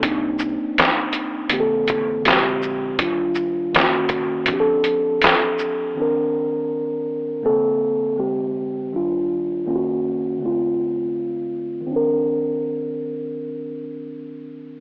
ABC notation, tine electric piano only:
X:1
M:4/4
L:1/8
Q:"Swing 16ths" 1/4=81
K:Cdor
V:1 name="Tine electric piano"
[B,CDE]4 [D,B,CGA]2 [D,_A,C^FG]2 | [E,G,DF]2 [E,B,_DF_G]2 [F,C=D=GA]4 | [E,CDB]4 [C,D,B,CA]2 [D,_A,CG]2 | [E,G,DF]2 [E,B,_DF_G]2 [=D,A,CF]4 |
[E,CDB]8 |]